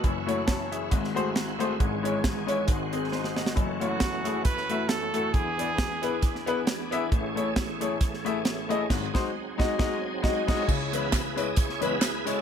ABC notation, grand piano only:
X:1
M:4/4
L:1/16
Q:"Swing" 1/4=135
K:C#m
V:1 name="Grand piano"
z2 [A,EFc] z [ca]2 [Ge]4 [A,FG^B] z3 [A,FGB] z | z2 [G,CEc] z3 [G,CEc] z3 [^B,G]2 [D^B]2 [Fd]2- | [Fd]2 [A,EFc] z3 [A,EFG] z3 [A,EFe] z3 [A,EFA] z | z2 [B,EG=d] z3 [B,EGB] z3 [B,EGB] z3 [B,EGe] z |
z2 [A,EGc] z3 [A,EGc] z3 [A,EGe] z3 [A,EGd] z | [G,,,G,,]2 [G,DF^B]2 z2 [G,DFd]2 [G,DFd]2 z2 [G,DFd]2 [G,DFd]2 | z2 [G,CEB] z3 [G,CEB] z3 [G,CEB] z3 [G,CEc] z |]
V:2 name="Grand piano" clef=bass
[F,,,F,,]8 [G,,,G,,]8 | [G,,,G,,]8 [G,,,G,,]8 | [F,,,F,,]16 | [E,,E,]16 |
[A,,,A,,]16 | z16 | [C,,C,]16 |]